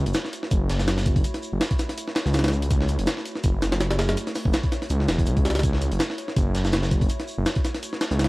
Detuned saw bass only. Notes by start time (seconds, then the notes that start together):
0.06 F#1
0.51 F#1
1.53 F#1
2.26 C#2
2.99 F#1
3.44 F#1
4.45 F#1
4.90 C#2
5.09 E1
5.27 C#2
5.92 F#1
6.36 F#1
7.38 F#1
8.11 C#2